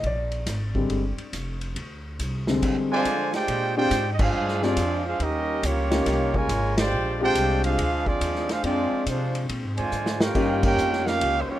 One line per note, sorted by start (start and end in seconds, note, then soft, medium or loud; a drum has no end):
0.03 0.46 A#1 loud
0.03 1.31 D5 medium
0.03 kick soft
0.03 ride medium
0.32 ride medium
0.46 0.89 G#1 loud
0.46 kick soft
0.46 snare soft
0.46 hi-hat pedal medium
0.46 ride medium
0.75 1.00 D3 soft
0.75 1.00 G3 medium
0.75 1.01 G#3 soft
0.75 1.01 C4 medium
0.75 kick medium
0.90 1.16 G1 medium
0.90 kick soft
0.90 ride medium
1.18 muted upright bass stroke soft
1.18 ride soft
1.33 1.75 F1 medium
1.33 kick soft
1.33 hi-hat pedal medium
1.33 ride medium
1.61 ride medium
1.76 2.18 D2 loud
1.76 kick soft
1.76 ride medium
2.19 2.61 C2 loud
2.19 kick soft
2.19 hi-hat pedal medium
2.19 ride medium
2.47 3.03 D3 medium
2.47 3.03 G3 soft
2.47 3.03 G#3 soft
2.47 3.03 C4 medium
2.47 snare medium
2.62 kick medium
2.62 crash medium
2.62 ride medium
2.91 3.31 D3 loud
2.91 3.31 F3 loud
2.91 3.31 G#3 loud
2.91 3.32 F4 loud
2.91 3.32 C5 medium
2.91 3.32 D5 loud
2.91 3.32 G#5 loud
3.05 kick soft
3.05 hi-hat pedal medium
3.05 ride medium
3.33 3.76 G#3 loud
3.33 3.76 D4 medium
3.33 3.76 F4 loud
3.33 3.76 G4 medium
3.33 3.76 C5 medium
3.33 3.76 D5 loud
3.33 3.77 G5 loud
3.33 snare soft
3.33 ride soft
3.48 3.90 A#2 loud
3.48 kick soft
3.48 ride medium
3.77 3.90 G#3 medium
3.77 4.08 G#3 medium
3.77 3.90 C4 medium
3.77 3.90 D4 medium
3.77 4.08 D4 medium
3.77 4.08 F4 medium
3.77 3.90 F4 medium
3.77 4.08 G4 loud
3.77 3.90 G4 medium
3.77 4.09 C5 loud
3.77 4.08 D5 medium
3.77 4.09 G5 loud
3.91 4.33 G#2 loud
3.91 kick soft
3.91 hi-hat pedal medium
3.91 ride medium
4.13 4.21 D#5 medium
4.19 4.62 G#3 medium
4.19 4.62 D4 medium
4.19 4.64 D4 medium
4.19 4.63 F4 loud
4.19 4.62 G#4 medium
4.19 4.64 C5 medium
4.19 4.64 F5 loud
4.19 kick loud
4.19 crash medium
4.34 4.76 G2 loud
4.48 snare soft
4.62 5.06 F3 medium
4.62 4.76 G#3 medium
4.62 5.04 G#3 medium
4.62 4.76 C4 medium
4.62 5.06 C4 medium
4.62 4.76 D4 medium
4.62 5.04 D4 medium
4.62 4.76 F4 medium
4.62 5.06 F4 medium
4.62 4.76 G4 medium
4.62 5.06 G#4 medium
4.62 5.06 D5 loud
4.62 snare soft
4.77 5.19 F2 medium
4.77 kick soft
4.77 hi-hat pedal medium
4.77 ride medium
5.06 5.19 G#3 medium
5.06 5.19 D4 medium
5.06 5.20 D4 medium
5.06 5.19 F4 medium
5.06 5.21 G#4 medium
5.06 5.21 C5 medium
5.06 5.21 F5 medium
5.20 5.62 D#2 loud
5.20 5.62 G3 medium
5.20 5.61 A#3 loud
5.20 5.65 C#4 medium
5.20 5.63 D#4 loud
5.20 5.65 A#4 medium
5.20 5.65 D#5 loud
5.20 kick soft
5.20 ride medium
5.24 5.64 G4 medium
5.63 6.05 C#2 loud
5.63 6.34 G3 medium
5.63 6.34 A#3 medium
5.63 6.35 A#3 medium
5.63 6.34 C#4 medium
5.63 6.35 F4 medium
5.63 6.35 G4 medium
5.63 6.36 C#5 loud
5.63 kick soft
5.63 hi-hat pedal medium
5.63 ride medium
5.91 6.46 A#3 medium
5.91 6.46 C#4 medium
5.91 6.46 D#4 medium
5.91 6.46 F4 medium
5.91 6.46 G4 medium
5.91 snare medium
5.91 ride medium
6.06 6.48 C2 medium
6.06 kick soft
6.06 snare soft
6.06 ride medium
6.34 6.77 A#2 loud
6.34 6.78 C#3 loud
6.34 6.76 G#3 loud
6.34 6.78 F4 loud
6.34 6.78 A#4 loud
6.34 6.79 C#5 loud
6.34 6.79 G#5 loud
6.34 kick medium
6.49 6.91 G#1 medium
6.49 kick soft
6.49 hi-hat pedal medium
6.49 ride medium
6.77 7.17 G#3 loud
6.77 7.17 D4 medium
6.77 7.18 F4 medium
6.77 7.17 G4 medium
6.77 7.18 C5 medium
6.77 7.18 D5 loud
6.77 7.18 G5 medium
6.77 snare loud
6.77 ride medium
6.92 7.34 A#1 loud
7.20 7.75 G#3 medium
7.20 7.61 G#3 medium
7.20 7.75 C4 medium
7.20 7.75 D4 medium
7.20 7.61 D4 loud
7.20 7.75 F4 medium
7.20 7.62 F4 medium
7.20 7.75 G4 medium
7.20 7.61 G4 medium
7.20 7.62 C5 loud
7.20 7.62 D5 medium
7.20 7.62 G5 loud
7.35 7.77 C2 loud
7.35 kick soft
7.35 hi-hat pedal medium
7.35 ride medium
7.64 8.06 G#3 medium
7.64 8.06 D4 medium
7.64 8.07 D4 medium
7.64 8.06 F4 medium
7.64 8.07 G#4 medium
7.64 8.07 C5 medium
7.64 8.07 F5 loud
7.64 ride medium
7.78 8.20 D2 loud
7.78 kick soft
7.78 ride medium
8.06 8.50 F3 medium
8.06 8.50 G#3 medium
8.06 8.50 C4 medium
8.06 8.50 D4 medium
8.06 8.50 F4 medium
8.06 8.50 G#4 medium
8.06 8.50 D5 loud
8.06 kick medium
8.21 8.62 D#2 medium
8.21 kick soft
8.21 hi-hat pedal medium
8.21 ride medium
8.35 snare soft
8.49 8.65 G#3 medium
8.49 8.65 D4 medium
8.49 8.64 D4 medium
8.49 8.65 F4 medium
8.49 8.64 G#4 medium
8.49 8.65 C5 medium
8.49 8.65 F5 medium
8.49 snare soft
8.49 ride medium
8.63 8.90 F2 loud
8.63 9.05 F3 medium
8.63 9.84 G#3 medium
8.63 9.05 G#3 medium
8.63 9.84 C4 medium
8.63 9.05 C4 medium
8.63 9.84 D4 medium
8.63 9.05 D4 medium
8.63 9.84 F4 medium
8.63 9.05 F4 medium
8.63 9.05 G#4 medium
8.63 9.05 D5 loud
8.63 9.84 G5 medium
8.63 kick soft
8.63 ride medium
8.92 muted upright bass stroke soft
9.06 9.48 C3 loud
9.06 9.44 F3 medium
9.06 9.44 G#3 medium
9.06 9.45 G#3 medium
9.06 9.44 C4 medium
9.06 9.45 D4 medium
9.06 9.45 F4 medium
9.06 9.45 C5 medium
9.06 kick soft
9.06 hi-hat pedal medium
9.06 ride medium
9.35 ride medium
9.49 9.64 A#2 medium
9.49 kick soft
9.49 ride medium
9.64 9.78 G#2 medium
9.78 9.92 F2 medium
9.78 10.18 D3 medium
9.78 10.18 F3 medium
9.78 10.18 G#3 medium
9.78 10.18 F4 medium
9.78 10.18 C5 medium
9.78 10.18 D5 medium
9.78 10.18 G#5 medium
9.78 ride medium
9.92 10.34 G#2 medium
9.92 hi-hat pedal medium
10.06 snare medium
10.21 10.62 A#3 medium
10.21 10.63 C#4 medium
10.21 10.64 F4 medium
10.21 10.63 G4 medium
10.21 10.64 A#4 medium
10.21 10.64 C#5 medium
10.21 10.64 G5 medium
10.21 snare loud
10.35 10.76 G2 medium
10.35 11.55 A#3 medium
10.35 11.55 C#4 medium
10.35 11.55 D#4 medium
10.35 11.55 F4 medium
10.35 11.55 G4 loud
10.35 kick medium
10.35 crash medium
10.63 11.03 A#3 medium
10.63 11.04 C#4 medium
10.63 11.04 F4 medium
10.63 11.04 G4 medium
10.63 11.04 A#4 medium
10.63 11.04 C#5 medium
10.63 11.04 G5 loud
10.63 kick loud
10.63 crash medium
10.77 11.19 F2 loud
10.77 hi-hat pedal medium
10.93 snare soft
11.06 11.40 A#3 medium
11.06 11.40 C#4 medium
11.06 11.41 C#4 medium
11.06 11.40 F4 medium
11.06 11.41 G4 medium
11.06 11.41 A#4 medium
11.06 11.41 F5 loud
11.06 snare medium
11.21 11.47 C#2 loud
11.21 kick soft
11.21 ride medium
11.41 11.50 C5 medium
11.48 11.59 G3 medium
11.48 11.59 A#3 medium
11.48 11.59 C#4 medium
11.48 11.59 F4 medium
11.48 11.59 G4 medium
11.48 11.59 C#5 loud
11.48 muted upright bass stroke soft